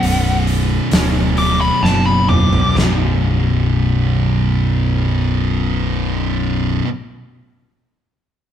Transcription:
Already playing: B1 F#2 B2 F#5
0.03 B0, open hi-hat
0.47 open hi-hat
0.91 D1 B1 F#2 B2, snare, open hi-hat
1.36 B1 F#2 B2 D6, open hi-hat
1.61 B5
1.82 F#1 B1 F#2 B2 A5, snare
2.06 B5
2.29 D6, mid tom
2.53 floor tom
2.75 B0 B1 F#2 B2, snare

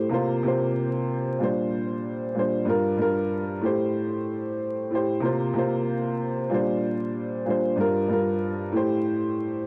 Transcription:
Already playing: A2 A3 G4 C5
0.09 C3 A#3 F4
0.14 C5
0.43 C3 A#3 F4
0.48 C5
1.39 A#2 G3 D4
1.44 C5
2.34 A#2 G3 D4
2.39 C5
2.65 G2 G3 F4
2.69 A#4
2.97 G2 G3 F4
3.02 A#4
3.61 A2 A3 G4
3.66 C5
4.91 A2 A3 G4
4.95 C5
5.20 C3 A#3 F4
5.25 C5
5.54 C3 A#3 F4
5.58 C5
6.50 A#2 G3 D4
6.54 C5
7.45 A#2 G3 D4
7.50 C5
7.76 G2 G3 F4
7.80 A#4
8.08 G2 G3 F4
8.13 A#4
8.72 A2 A3 G4
8.77 C5

